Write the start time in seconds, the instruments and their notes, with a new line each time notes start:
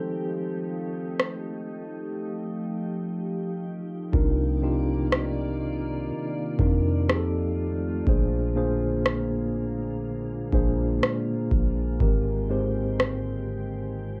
Already playing: tine electric piano F3 C4 D#4 G4 A4 C5, ambient pad F3 A3 D#4 G4
1.20 cross-stick
4.12 808-style bass C2, tine electric piano C3 C4 D4 D#4 F4 A#4, ambient pad D#3 A#3 F4 D5, kick
4.62 tine electric piano C3 C4 D4 D#4 F4 G4
5.12 cross-stick
6.11 808-style bass C3
6.59 808-style bass F2, tine electric piano C3 C4 D4 D#4 F4 A#4, kick
7.08 tine electric piano F3 C4 D#4 G4 G#4, ambient pad A3 C4 F4, cross-stick
7.17 tine electric piano A4
8.06 808-style bass A#1, tine electric piano A#2 A#3 D4 G#4 C5, ambient pad D3 G#3 A#3, kick
8.55 tine electric piano A#2 A#3 D4 G#4 C5
9.06 cross-stick
10.52 808-style bass A#1, tine electric piano A#2 A#3 D4 G#4 C5, kick
11.03 cross-stick
11.51 808-style bass A#1, kick
11.99 808-style bass G#1, tine electric piano G#2 G#3 C4 G4 A#4, ambient pad D#3 C4 G4, kick
12.49 tine electric piano G#2 G#3 C4 G4 C5
13.00 cross-stick